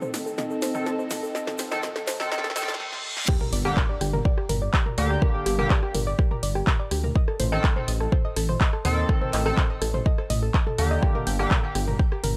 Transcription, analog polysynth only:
0.75 D#3 C4 A4
1.71 D#3 C4 A4
2.20 D#3 C4 A4
2.32 D#3 C4 A4
2.56 D#3 C4 A4
3.65 D3 A#3 G4
4.98 D3 A#3 G4
5.59 D3 A#3 G4
7.52 D#3 C4 A4
8.85 D#3 C4 A4
9.46 D#3 C4 A4
10.78 D3 A#3 G4
11.39 D3 A#3 G4

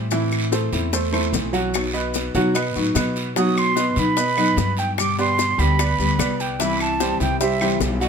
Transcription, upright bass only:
Already playing: A2
0.73 E2
1.33 B1
2.35 B2
2.76 A2
2.96 B2
3.97 B2
4.57 G2
5.58 D2
5.99 D2
6.19 C2
7.20 C2
7.80 B1

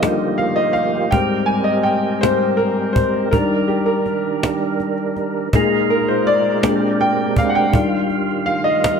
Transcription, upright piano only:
Already playing: D#3 G3 D4 D#5
0.03 D3 D#3 G3
0.38 F5
0.56 D#5
0.73 F5
1.11 G#2 G3 C4 G5
1.46 G#5
1.64 D#5
1.83 G5
2.21 G#2 G3 C4 C5
2.57 A#4
2.93 C5
3.31 D#3 G3 D4 A#4
3.68 G4
3.86 A#4
5.53 A#2 G#3 D#4 G#4
5.90 A#4
6.08 C5
6.27 D5
6.63 A#2 G#3 D4
7.01 G5
7.38 F5
7.49 F#5
7.55 G5
7.73 D#3 G3 D4
8.46 F5
8.64 D#5

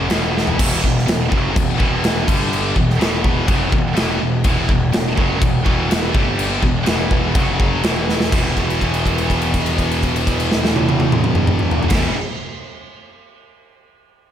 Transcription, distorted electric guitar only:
0.09 E2 B2 E3
0.58 E2 B2 E3
0.83 E2 B2
1.06 E2 B2
1.29 F#2 C#3 F#3
1.53 E2 B2
1.78 E2 B2 E3
2.26 G2 D3 G3
2.76 E2 B2
2.99 E2 B2 E3
3.46 F#2 C#3 F#3
3.71 E2 B2
3.95 E2 B2 E3
4.20 E2 B2
4.44 E2 B2 E3
4.68 E2 B2
4.92 E2 B2
5.15 F#2 C#3 F#3
5.40 E2 B2
5.64 E2 B2 E3
6.12 G2 D3 G3
6.62 E2 B2
6.86 E2 B2 E3
7.34 F#2 C#3 F#3
7.82 E2 B2 E3
8.31 E2 B2
8.35 E3
11.88 E2 B2
11.93 E3

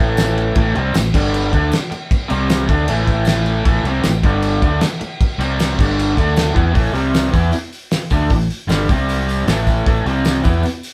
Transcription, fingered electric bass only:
Already playing: A1
0.55 A1
0.77 C2
0.96 A1
1.15 G1
1.53 D2
1.91 muted fingered electric bass stroke
2.31 C2
2.69 D2
2.89 A1
3.65 A1
3.84 C2
4.04 A1
4.23 G1
4.63 D2
5.01 muted fingered electric bass stroke
5.38 C2
5.79 G1
6.17 D2
6.56 E2
6.75 A1
6.93 C2
7.34 E2
7.54 muted fingered electric bass stroke
8.11 D2
8.31 A1
8.67 G1
8.89 C2
9.47 A1
9.86 A1
10.06 C2
10.46 E2
10.65 muted fingered electric bass stroke

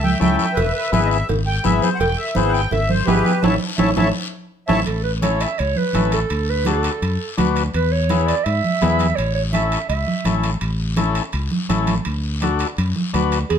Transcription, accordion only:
0.02 E5 G5
0.19 E5 G5
0.38 E5 G5
0.53 B4 E5
0.73 B4 E5
0.92 B4 E5
1.05 D#5
1.10 E5
1.47 G5
1.64 E5
1.82 C5
1.95 F#5
2.00 G5
2.17 E5
2.36 C5
2.49 F#5 G5
2.72 E5
2.90 C5
3.06 G4 B4
3.42 C#5 E5 A5
3.77 C#5 E5 A5
3.98 C#5 E5 A5
4.68 C#5 E5 A5

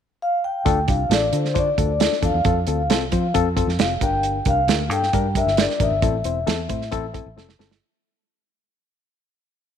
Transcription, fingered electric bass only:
0.66 D2
0.88 C2
1.09 A1
1.33 D3
1.78 D2
2.22 E2
2.34 E2
2.45 F2
2.68 D2
2.90 C2
3.12 F3
3.35 F2
3.67 F2
3.78 F1
4.01 G1
4.46 C2
4.67 D2
4.90 G2
5.13 G2
5.46 G1
5.80 A1
5.91 G1
6.02 A1
6.25 E1
6.47 E2
6.69 A2
6.92 A1
7.26 A1
7.37 F1
7.59 G1

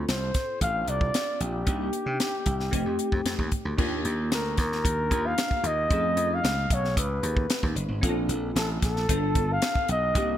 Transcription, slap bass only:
0.08 C2
0.61 A1
0.88 C2
1.40 A#1
1.67 C2
2.06 C3
2.46 C2
2.73 F1
2.85 F2
3.12 F2
3.25 F2
3.39 D#2
3.65 D2
3.78 D#2
4.05 D#2
4.31 D2
4.58 D#2
4.84 D#2
5.11 D#2
5.63 D#2
5.90 F2
6.17 F2
6.43 C#2
6.70 B1
6.97 C#2
7.23 D#2
7.63 D#2
7.75 F#1
7.88 G#1
8.03 A#1
8.29 A#1
8.55 A1
8.83 A#1
9.09 G1
9.35 G1
9.89 B1
10.15 C2

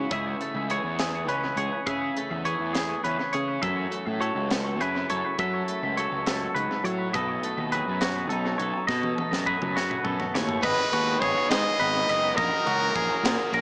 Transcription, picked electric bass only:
0.11 C#2
0.54 C#2
0.84 E2
1.28 C#2
1.56 C#2
1.86 C#3
2.31 E2
2.59 E2
3.05 E2
3.34 C#3
3.62 F#2
4.07 A2
4.35 C#2
4.81 F#2
5.11 F#2
5.39 F#3
5.83 C#2
6.12 C#2
6.55 C#2
6.84 F#3
7.14 B1
7.58 D#2
7.88 F#2
8.31 B1
8.59 B1
8.89 B2
9.31 F#2
9.62 F#2
10.05 F#2
10.35 D#2
10.64 G#1
10.93 D#2
11.21 G#1
11.50 G#2
11.80 G#1
12.09 F#1
12.38 A#1
12.67 C#2
12.96 A#1
13.23 A#2
13.53 A#1

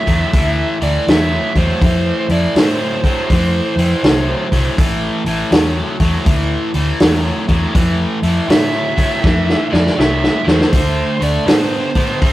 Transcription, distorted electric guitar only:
0.06 A2 F#3
0.33 A2 E3
0.81 A2 E3
1.08 A2 F#3
1.56 A2 F#3
1.83 A2 E3
2.30 A2 E3
2.56 A2 F#3
3.05 A2 F#3
3.32 A2 E3
3.78 A2 E3
4.04 A2 F#3
4.52 A2 F#3
4.79 A2 E3
5.26 A2 E3
5.52 A2 F#3
6.00 A2 F#3
6.27 A2 E3
6.75 A2 E3
7.01 A2 F#3
7.48 A2 F#3
7.74 A2 E3
8.23 A2 E3
8.48 A2 F#3
8.96 A2 F#3
9.21 A2 E3
9.69 A2 E3
9.96 A2 F#3
10.44 A2 F#3
10.71 D3 A3
11.19 D3 A3
11.46 D3 B3
11.96 D3 B3
12.21 D3 A3

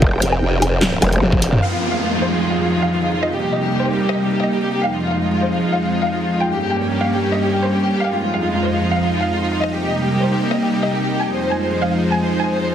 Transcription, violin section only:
1.62 F5
1.72 F4
1.82 F4
1.92 F5
2.02 F4
2.12 F4
2.22 C5
2.32 F4
2.42 F4
2.52 F5
2.62 F4
2.72 F4
2.82 F5
2.93 F4
3.02 F4
3.13 F4
3.22 D#5
3.32 G4
3.42 G4
3.52 D#5
3.62 G4
3.73 G4
3.82 C5
3.92 G4
4.02 G4
4.12 D#5
4.22 G4
4.32 G4
4.42 D#5
4.52 G4
4.62 G4
4.72 G4
4.82 F5
4.92 F4
5.02 F4
5.12 F5
5.22 F4
5.32 F4
5.42 C5
5.52 F4
5.62 F4
5.72 F5
5.82 F4
5.92 F4
6.02 F5
6.12 F4
6.22 F4
6.32 F4
6.42 G5
6.52 G4
6.62 G4
6.72 G5
6.82 G4
6.92 G4
7.02 F5
7.12 G4
7.22 G4
7.32 D#5
7.42 G4
7.52 G4
7.62 C5
7.72 G4
7.82 G4
7.92 G4
8.02 F5
8.13 F4
8.22 F4
8.32 F5
8.42 F4
8.52 F4
8.62 C5
8.73 F4
8.82 F4
8.93 F5
9.02 F4
9.13 F4
9.22 F5
9.33 F4
9.42 F4
9.53 F4
9.62 D#5
9.73 G4
9.82 G4
9.92 D#5
10.02 G4
10.12 G4
10.22 C5
10.33 G4
10.42 G4
10.53 D#5
10.62 G4
10.73 G4
10.82 D#5
10.92 G4
11.02 G4
11.12 G4
11.22 G#5
11.32 C5
11.42 C5
11.52 G#5
11.62 C5
11.72 C5
11.82 F5
11.92 C5
12.02 C5
12.12 G#5
12.22 C5
12.32 C5
12.42 G#5
12.52 C5
12.62 C5

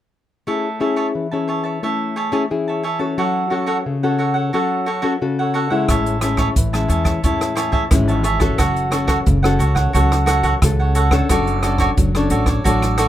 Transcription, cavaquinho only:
0.47 C#5 E5 A5
0.80 G#4 C#5 E5 A5
0.96 G#4 C#5 E5 A5
1.31 C#5 E5 A5
1.48 G#4 C#5 E5 A5
1.64 C#5 E5 A5
1.83 C#5 E5 A5
2.16 G#4 C#5 E5 A5
2.32 G#4 C#5 E5 A5
2.68 C#5 E5 A5
2.83 G#4 C#5 E5 A5
2.99 C#5 E5 A5
3.18 F#4 A4 C#5 F#5
3.50 F#4 A4 C#5 F#5
3.66 F#4 A4 C#5 F#5
4.03 A4 C#5 F#5
4.18 F#4 A4 C#5 F#5
4.34 A4 C#5 F#5
4.53 F#4 A4 C#5 F#5
4.86 F#4 A4 C#5 F#5
5.02 F#4 A4 C#5 F#5
5.39 A4 C#5 F#5
5.54 F#4 A4 C#5 F#5
5.70 A4 C#5 F#5
5.89 C#5 E5 A5
6.21 G#4 C#5 E5 A5
6.38 G#4 C#5 E5 A5
6.73 C#5 E5 A5
6.88 G#4 C#5 E5 A5
7.04 C#5 E5 A5
7.24 C#5 E5 A5
7.55 G#4 C#5 E5 A5
7.72 G#4 C#5 E5 A5
8.08 C#5 E5 A5
8.23 G#4 C#5 E5 A5
8.39 C#5 E5 A5
8.58 F#4 A4 C#5 F#5
8.91 F#4 A4 C#5 F#5
9.07 F#4 A4 C#5 F#5
9.43 A4 C#5 F#5
9.59 F#4 A4 C#5 F#5
9.75 A4 C#5 F#5
9.93 F#4 A4 C#5 F#5
10.26 F#4 A4 C#5 F#5
10.43 F#4 A4 C#5 F#5
10.79 A4 C#5 F#5
10.95 F#4 A4 C#5 F#5
11.11 A4 C#5 F#5
11.30 F#4 A4 C#5 D5
11.63 F#4 A4 C#5 D5
11.80 F#4 A4 C#5 D5
12.15 A4 C#5 D5
12.31 F#4 A4 C#5 D5
12.46 A4 C#5 D5
12.64 F#4 A4 C#5 D5
12.97 F#4 A4 C#5 D5

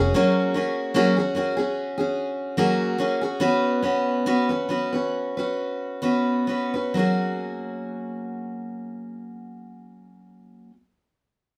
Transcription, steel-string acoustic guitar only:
Already playing: F#4 G#4
0.00 C#4
0.14 F#3 A#3 C#4 F#4 G#4
0.54 A#3 C#4 F#4 G#4
0.94 F#3 A#3 C#4 F#4 G#4
1.17 C#4 F#4 G#4
1.35 A#3 C#4 F#4 G#4
1.57 C#4 F#4 G#4
1.98 C#4 F#4 G#4
2.57 F#3 A#3 C#4 F#4 G#4
2.98 A#3 C#4 F#4 G#4
3.21 C#4 F#4 G#4
3.40 B3 C#4 F#4 B4
3.82 B3 C#4 F#4 B4
4.26 B3 C#4 F#4 B4
4.49 C#4 F#4 B4
4.69 B3 C#4 F#4 B4
4.92 C#4 F#4 B4
5.37 C#4 F#4 B4
6.02 B3 C#4 F#4 B4
6.47 B3 C#4 F#4 B4
6.74 C#4 F#4 B4
6.94 F#3 A#3 C#4 F#4
6.99 G#4

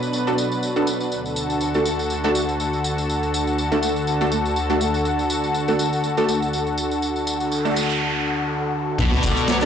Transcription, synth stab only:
0.27 B3 D4 F#4 A4
0.76 B3 D4 F#4 A4
1.75 A3 D4 F#4 A4
2.24 A3 D4 F#4 A4
3.72 A3 D4 F#4 A4
4.21 A3 D4 F#4 A4
4.70 A3 D4 F#4 A4
5.68 A3 D4 F#4 A4
6.17 A3 D4 F#4 A4
7.65 A3 D4 F#4 A4
9.62 B3 D4 F#4 A4

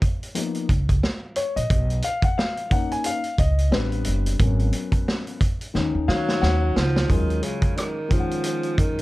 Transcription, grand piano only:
0.35 F3 A#3 B3 D#4
1.36 C#5
1.56 D#5
2.04 F5
2.24 F#5
2.38 F5
2.70 A#3 C#4 D#4 F#5
2.92 G#5
3.06 F5
3.39 D#5
3.71 G3 B3 C4 D4 B4
4.39 F#3 B3 C#4 A#4
5.74 D#3 C#4 D#4
6.08 F5
6.42 F#5
7.08 F#3 G#3 C#4 F4
8.09 D#3 G#3 C#4 F4
8.19 F#5

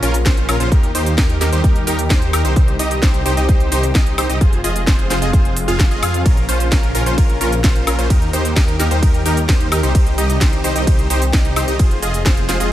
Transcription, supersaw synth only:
0.03 C#4 F4 A#4
0.26 C#4 F4 C5
0.49 C#4 F4 A#4
0.60 C#4 F4 C5
0.72 D#4 G4 A#4
0.95 D#4 G4 C5
1.18 D#4 G4 A#4
1.41 D#4 G4 A#4
1.52 D#4 G4 C5
1.64 D#4 G4 A#4
1.87 D#4 G4 A#4
2.10 D#4 G4 C5
2.33 D#4 G4 A#4
2.45 D#4 G4 C5
2.56 G4
2.79 D#4 G4 D#5
3.02 D#4 G4 C5
3.26 D#4 G4 C5
3.37 D#4 G4 D#5
3.49 D#4 G4 C5
3.72 D#4 G4 C5
3.95 D#4 G4 D#5
4.18 D#4 G4 C5
4.29 D#4 G4 D#5
4.41 F4 G#4 C5
4.64 F4 G#4 D#5
4.87 F4 G#4 C5
5.10 F4 G#4 C5
5.22 F4 G#4 D#5
5.33 F4 G#4 C5
5.68 F4 G#4 F5
5.91 F4 G#4 D#5
6.02 F4 G#4 F5
6.26 C#4 F4 A#4
6.49 C#4 F4 C5
6.72 C#4 F4 A#4
6.95 C#4 F4 A#4
7.06 C#4 F4 C5
7.18 A#4
7.41 C#4 F4 A#4
7.64 C#4 F4 C5
7.87 C#4 F4 A#4
7.99 C#4 F4 C5
8.10 D#4 G4 A#4
8.33 D#4 G4 C5
8.56 D#4 G4 A#4
8.79 D#4 G4 A#4
8.91 D#4 G4 C5
9.03 D#4 G4 A#4
9.26 D#4 G4 A#4
9.49 D#4 G4 C5
9.72 D#4 G4 A#4
9.83 D#4 G4 C5
9.95 D#4 G4 C5
10.18 D#4 G4 D#5
10.41 G4 C5
10.64 D#4 G4 C5
10.76 D#4 G4 D#5
10.87 D#4 G4 C5
11.10 D#4 G4 C5
11.33 D#4 G4 D#5
11.56 D#4 G4 C5
11.68 D#4 G4 D#5
11.79 F4 G#4 C5
12.02 F4 G#4 D#5
12.25 F4 G#4 C5
12.49 F4 G#4 C5
12.60 F4 G#4 D#5

